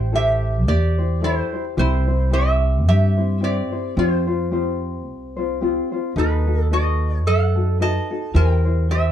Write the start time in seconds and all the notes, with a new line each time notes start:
Already playing: A1 E4 G4 C5 G5
0.12 E4 G4 A4 C5 E5
0.68 E2 G4 D5
0.98 E4 G4 C5
1.22 E4 G4 A4 C5
1.53 E4 G4 C5
1.77 C2 C4 E4 G4 C5
2.08 C4 E4 C5
2.31 C4 E4 G4 C5 E5
2.87 G2 G4 E5
3.17 C4 E4 C5
3.41 C4 E4 G4 C5 D5
3.72 C4 E4 C5
3.97 F2 C4 F4 G4 C5
4.27 C4 F4 C5
4.51 C4 F4 G4 C5
5.07 C2
5.37 C4 F4 C5
5.61 C4 F4 G4 C5
5.92 C4 F4 C5
6.16 D#2 D#4 F#4 A4 B4
6.47 D#4 F#4 A4
6.62 A4
6.71 D#4 F#4 A4 B4 D#5
7.16 C#5
7.25 F#2 A4 F#5
7.56 D#4 F#4 A4
7.80 D#4 F#4 A4 B4 D#5 A5
8.11 D#4 F#4 A4
8.34 E2 E4 G4 A#4 C5 G5
8.65 E4 G4 C5
8.89 E4 G4 A#4 C5 E5